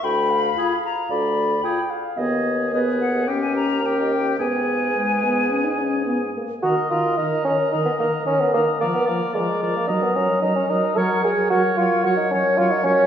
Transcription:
<<
  \new Staff \with { instrumentName = "Flute" } { \time 4/4 \key gis \minor \tempo 4 = 111 b''4. ais''8 b''4. r8 | r4 dis''8 fis''8 g''16 gis''16 ais''8 g''16 dis''16 g''8 | gis''2.~ gis''8 r8 | \key ees \minor bes''8 bes''8 bes''8 bes''8 bes''8 bes''8 bes''8 bes''8 |
bes''8 bes''8 bes''8 bes''8 bes''8 bes''8 bes''8 bes''8 | ges''8 ges''8 ges''8 ges''8 ges''8 ges''8 ges''8 ges''8 | }
  \new Staff \with { instrumentName = "Oboe" } { \time 4/4 \key gis \minor r4 aes'4 r4 aes'4 | gis'4 gis'4 g'4 g'4 | gis'2.~ gis'8 r8 | \key ees \minor ees''8 ees''8 ees''8 ees''8 ees''8 ees''8 ees''8 ees''8 |
d''8 d''8 d''8 d''8 ees''8 ees''8 ees''8 ees''8 | des''8 des''8 des''8 des''8 des''8 des''8 des''8 des''8 | }
  \new Staff \with { instrumentName = "Clarinet" } { \time 4/4 \key gis \minor g''8 f''4. d''4 g''8 f''8 | dis''8 r8 b'4 ais'2 | b'2.~ b'8 r8 | \key ees \minor bes'8 bes'8 bes'8 bes'8 bes'8 bes'8 bes'8 bes'8 |
bes'8 bes'8 bes'8 bes'8 bes'8 bes'8 bes'8 bes'8 | bes'8 bes'8 bes'8 bes'8 bes'8 bes'8 bes'8 bes'8 | }
  \new Staff \with { instrumentName = "Bassoon" } { \time 4/4 \key gis \minor d,4 r4 d,4 r4 | dis,1 | gis,2.~ gis,8 r8 | \key ees \minor ges'8 f'8 ees'8 des'8 ees'16 ces'16 bes8 des'16 ces'16 bes8 |
bes16 ces'16 bes8 aes8. bes16 ees'16 ces'16 des'8 ees'16 des'16 ees'8 | bes'8 aes'8 ges'8 f'8 ges'16 ees'16 des'8 f'16 ees'16 des'8 | }
  \new Staff \with { instrumentName = "French horn" } { \clef bass \time 4/4 \key gis \minor r4 f'4 r4 f'4 | b4 b4 cis'4 cis'4 | b4 gis8 b8 cis'16 dis'16 cis'8 b8 ais8 | \key ees \minor ees8 ees8 ees8 ees8 ees8 ees8 ees8 ees8 |
f8 f8 f8 f8 ges8 ges8 ges8 ges8 | ges8 ges8 ges8 ges8 ges8 ges8 ges8 ges8 | }
>>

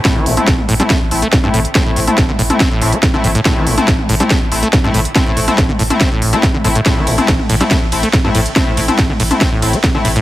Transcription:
<<
  \new Staff \with { instrumentName = "Analog polysynth" } { \time 4/4 \key a \minor \tempo 4 = 141 <a c' e'>8. <a c' e'>16 r8. <a c' e'>8 r16 <a c' e'>16 r8 <a c' e'>8 r16 | <a c' e'>8. <a c' e'>16 r8. <a c' e'>8 r16 <a c' e'>16 r8 <a c' e'>8 r16 | <a c' e'>8. <a c' e'>16 r8. <a c' e'>8 r16 <a c' e'>16 r8 <a c' e'>8 r16 | <a c' e'>8. <a c' e'>16 r8. <a c' e'>8 r8 <a c' e'>16 r8 <a c' e'>16 r16 |
<a c' e'>8. <a c' e'>16 r8. <a c' e'>8 r16 <a c' e'>16 r8 <a c' e'>8 r16 | <a c' e'>8. <a c' e'>16 r8. <a c' e'>8 r16 <a c' e'>16 r8 <a c' e'>8 r16 | }
  \new Staff \with { instrumentName = "Acid bass" } { \clef bass \time 4/4 \key a \minor a,16 e16 a,16 r16 a,16 r16 a,16 g16 a16 r8 a16 a,16 g,16 a,16 r16 | c'16 a,16 a,16 r16 a,16 d16 a,16 r16 c'16 a,8 c'16 a,16 d16 a,16 a,16 | a,16 e16 a,16 r16 a,16 r16 a,16 g16 a16 r8 a16 a,16 g,16 a,16 r16 | c'16 a,16 a,16 r16 a,16 d16 a,16 r16 c'16 a,8 c'16 a,16 d16 a,16 a,16 |
a,16 e16 a,16 r16 a,16 r16 a,16 g16 a16 r8 a16 a,16 g,16 a,16 r16 | c'16 a,16 a,16 r16 a,16 d16 a,16 r16 c'16 a,8 c'16 a,16 d16 a,16 a,16 | }
  \new Staff \with { instrumentName = "Sub bass" } { \clef bass \time 4/4 \key a \minor r16 a,,16 a,,16 r16 a,,16 a,,16 a,,16 r8 a,,16 a,,16 r8 a,,16 a,,16 r16 | r16 a,,16 a,,16 r16 a,,16 a,,16 a,,16 r8 a,,16 a,,16 r8 a,,16 a,,16 r16 | r16 a,,16 a,,16 r16 a,,16 a,,16 a,,16 r8 a,,16 a,,16 r8 a,,16 a,,16 r16 | r16 a,,16 a,,16 r16 a,,16 a,,16 a,,16 r8 a,,16 a,,16 r8 a,,16 a,,16 r16 |
r16 a,,16 a,,16 r16 a,,16 a,,16 a,,16 r8 a,,16 a,,16 r8 a,,16 a,,16 r16 | r16 a,,16 a,,16 r16 a,,16 a,,16 a,,16 r8 a,,16 a,,16 r8 a,,16 a,,16 r16 | }
  \new DrumStaff \with { instrumentName = "Drums" } \drummode { \time 4/4 <hh bd sn>8 hho16 <hh toml>16 <hh bd sn>16 toml16 hho16 <hh toml>16 <hh bd sn>8 hho16 hh16 <hh bd sn>16 toml16 hho16 hh16 | <hh bd sn>8 hho16 <hh toml>16 <hh bd sn>16 toml16 hho16 <hh toml>16 <hh bd sn>8 hho16 hh16 <hh bd sn>16 toml16 hho16 hh16 | <hh bd sn>8 hho16 <hh toml>16 <hh bd sn>16 toml16 hho16 <hh toml>16 <hh bd sn>8 hho16 hh16 <hh bd sn>16 toml16 hho16 hh16 | <hh bd sn>8 hho16 <hh toml>16 <hh bd sn>16 toml16 hho16 <hh toml>16 <hh bd sn>8 hho16 hh16 <hh bd sn>16 toml16 hho16 hh16 |
<hh bd cymr sn>8 <hho cymr>16 <hh toml>16 <hh bd cymr sn>16 toml16 <hho cymr>16 <hh toml>16 <hh bd cymr sn>8 <hho cymr>16 hh16 <hh bd cymr sn>16 toml16 <hho cymr>16 hh16 | <hh bd cymr sn>8 <hho cymr>16 <hh toml>16 <hh bd cymr sn>16 toml16 <hho cymr>16 <hh toml>16 <hh bd cymr sn>8 <hho cymr>16 hh16 <hh bd cymr sn>16 toml16 <hho cymr>16 hh16 | }
>>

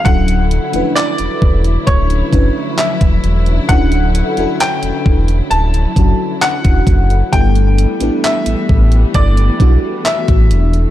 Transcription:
<<
  \new Staff \with { instrumentName = "Grand piano" } { \time 4/4 \key d \major \tempo 4 = 66 fis''4 d''4 cis''4 e''4 | fis''4 g''4 a''4 fis''4 | g''4 e''4 d''4 e''4 | }
  \new Staff \with { instrumentName = "FM electric piano" } { \time 4/4 \key d \major <fis cis' d' e' a'>8 r16 <f fis a d' e' b'>4 r8. <fis cis' d' e' b'>4 r8 | <fis cis' d' e' a'>8 r16 <fis cis' d' e' a'>4 r8. <fis cis' d' e' fis'>4 r8 | <g b d' e' a'>8 r16 <g b d' e' a'>4 r8. <g b d' e' fis'>4 r8 | }
  \new Staff \with { instrumentName = "String section" } { \clef bass \time 4/4 \key d \major <d fis e'>1~ | <d fis e'>1 | <e g a b>1 | }
  \new Staff \with { instrumentName = "Sub bass" } { \clef bass \time 4/4 \key d \major d,,8. e,,16 r16 e,,16 e,,8 d,,8 fis,,16 r8 e,,16 e,,8 | d,,8. e,,16 r16 e,,16 e,,8 d,,8 fis,,16 r8 e,,16 fis,,8 | g,,8. a,,16 r16 a,,16 a,,8 g,,8 b,,16 r8 a,,16 e,,8 | }
  \new DrumStaff \with { instrumentName = "Drums" } \drummode { \time 4/4 <hh bd>16 hh16 hh16 hh16 <hc hh>16 hh16 bd16 hh16 <hh bd>16 hh16 <hh bd>8 <hc hh>16 <hh bd>16 hh16 hh16 | <hh bd>16 hh16 hh16 hh16 <hc hh>16 hh16 bd16 hh16 hh16 hh16 <hh bd>8 <hc hh>16 <hh bd>16 <hh bd>16 hh16 | <hh bd>16 hh16 hh16 hh16 <hc hh>16 hh16 bd16 hh16 <hh bd>16 hh16 <hh bd>8 <hc hh>16 <hh bd>16 hh16 hh16 | }
>>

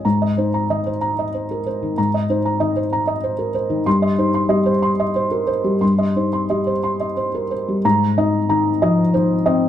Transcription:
<<
  \new Staff \with { instrumentName = "Felt piano" } { \time 6/8 \key aes \major \tempo 4. = 62 << { bes''8 r2 r8 | r2. | c'''8 r2 r8 | r2. |
bes''4 r2 | } \\ { r16 ees''16 c''16 bes''16 ees''16 c''16 bes''16 ees''16 c''16 bes'16 c''16 ees16 | bes''16 ees''16 c''16 bes''16 ees''16 c''16 bes''16 ees''16 c''16 bes'16 c''16 ees16 | r16 ees''16 c''16 c'''16 ees''16 c''16 c'''16 ees''16 c''16 bes'16 c''16 g16 | c'''16 ees''16 c''16 c'''16 ees''16 c''16 c'''16 ees''16 c''16 bes'16 c''16 g16 |
r8 ees''8 bes''8 ees''8 c''8 ees''8 | } >> }
  \new Staff \with { instrumentName = "Felt piano" } { \clef bass \time 6/8 \key aes \major aes,8 ees'8 ees4 r4 | aes,8 ees'8 ees4 r4 | g,8 ees'8 g4 r4 | g,8 ees'8 g4 r4 |
aes,8 ees'8 ees8 f8 ees8 c'8 | }
>>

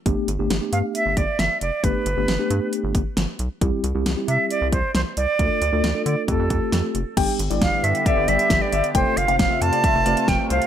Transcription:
<<
  \new Staff \with { instrumentName = "Grand piano" } { \time 4/4 \key g \mixolydian \tempo 4 = 135 r1 | r1 | r1 | r1 |
g''8 r16 d''8. r8 e''8 d''16 r8. e''16 r16 | g''8 r16 f''16 r16 e''16 r16 d''16 e''8 d''16 r8. c''16 r16 | }
  \new Staff \with { instrumentName = "Flute" } { \time 4/4 \key g \mixolydian r4. f''8 e''8 d''8 e''8 d''8 | b'2 r2 | r4. e''8 d''8 c''8 c''8 d''8~ | d''4. d''8 a'4. r8 |
r4 f''8 e''8 d''8 e''8. d''8. | c''8 f''8 f''8 a''4. g''8 f''8 | }
  \new Staff \with { instrumentName = "Tine electric piano" } { \time 4/4 \key g \mixolydian <a b d' g'>8 r16 <a b d' g'>16 r16 <a b d' g'>4~ <a b d' g'>16 r4. | <a b d' g'>8 r16 <a b d' g'>16 r16 <a b d' g'>4~ <a b d' g'>16 r4. | <g c' e' g'>8 r16 <g c' e' g'>16 r16 <g c' e' g'>4~ <g c' e' g'>16 r4. | <a d' f' a'>8 r16 <a d' f' a'>16 r16 <a d' f' a'>8. <a c' f' g'>4. r8 |
<g b d' g'>8 r16 <g b d' e'>4~ <g b d' e'>16 r8 <g b d' g'>4 r8 | <a c' f' a'>8 r16 <a c' f' c''>4~ <a c' f' c''>16 r8 <a c' f' b'>4 r8 | }
  \new Staff \with { instrumentName = "Analog synth pad" } { \time 4/4 \key g \mixolydian r1 | r1 | r1 | r1 |
<d b g'>1 | <c a f'>1 | }
  \new Staff \with { instrumentName = "Analog synth bass" } { \clef bass \time 4/4 \key g \mixolydian g,,16 r16 g,,16 g,,16 g,,16 r16 g,16 r8 g,,16 g,,16 r16 g,,16 r16 f,,16 r16 | g,,16 r16 g,,16 g,,16 g,,16 r16 g,16 r8 g,,16 g,,16 r16 g,,16 r16 b,,16 r16 | c,16 r16 c,16 c,16 c,16 r16 c16 r8 c,16 c,16 r16 c,16 r16 c,16 r16 | d,16 r16 d,16 d,16 d,16 r16 d16 r16 f,16 f,16 f,16 r16 f,16 r16 f,,16 r16 |
g,,16 r16 g,,16 g,,16 g,,16 r16 g,16 r8 g,,16 g,,16 r16 g,,16 r16 g,,16 r16 | f,,16 r16 f,,16 f,,16 f,,16 r16 f,16 r8 f,,16 f,,16 r16 f,,16 r16 c,16 r16 | }
  \new DrumStaff \with { instrumentName = "Drums" } \drummode { \time 4/4 <hh bd>8 hh8 <hh sn>8 hh8 hh8 <hh bd>8 <hh sn>8 hh8 | <hh bd>8 hh8 <hh sn>8 hh8 hh8 <hh bd>8 <hh sn>8 hh8 | <hh bd>8 hh8 <hh sn>8 hh8 hh8 <hh bd>8 <hh sn>8 hh8 | <hh bd>8 hh8 <hh sn>8 hh8 <hh bd>8 <hh bd>8 <hh sn>8 hh8 |
<cymc hh bd>8 hh16 hh16 <hh bd sn>8 hh16 hh16 <hh bd>8 hh16 hh16 <hh bd sn>8 hh16 hh16 | <hh bd>8 hh16 hh16 <hh bd sn>8 hh16 hh16 <hh bd>8 hh16 hh16 <hh bd sn>8 hh16 hh16 | }
>>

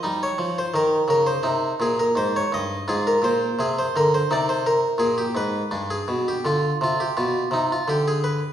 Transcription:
<<
  \new Staff \with { instrumentName = "Harpsichord" } { \time 4/4 \key aes \major \tempo 4 = 84 << { ees''16 des''8 c''16 bes'8 bes'16 c''8. aes'16 bes'16 c''16 des''16 ees''8 | \key c \minor aes'16 bes'16 c''8 aes'16 c''16 bes'16 c''16 d''16 c''16 bes'8 aes'16 g'16 b'8~ | b'16 aes'8 g'16 f'8 f'16 g'8. ees'16 f'16 g'16 gis'16 b'8 | } \\ { ees'2 ees'2 | f'2 ees'2 | d'2 f'2 | } >> }
  \new Staff \with { instrumentName = "Harpsichord" } { \clef bass \time 4/4 \key aes \major g8 f8 ees8 des8 c8 bes,8 aes,8 g,8 | \key c \minor aes,8 bes,8 c8 d8 c4 bes,8 aes,8 | g,8 b,8 d8 c8 b,8 c8 d4 | }
>>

